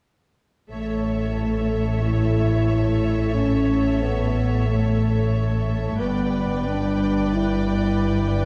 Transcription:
0.70 5.96 A1 soft
0.70 5.96 A2 soft
0.70 1.99 A3 soft
0.70 5.96 A4 soft
0.70 5.97 C#5 soft
0.70 5.97 E5 soft
2.02 3.32 E4 medium
3.34 3.99 C#4 soft
4.02 4.68 B3 soft
4.67 5.97 A3 soft
5.99 8.45 G1 soft
5.99 8.45 G2 soft
5.99 6.66 B3 soft
5.99 8.45 B4 soft
5.99 8.45 D5 soft
5.99 8.45 G5 soft
6.66 7.32 D4 soft
7.33 8.45 E4 medium

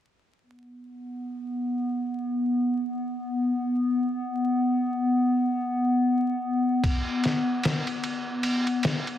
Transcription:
0.43 9.18 B3 medium
6.84 kick medium
6.84 ride medium
7.24 snare soft
7.24 ride medium
7.63 snare loud
7.63 ride medium
7.87 ride soft
8.04 ride medium
8.43 ride medium
8.67 ride soft
8.83 snare medium
8.83 ride medium
9.07 ride soft

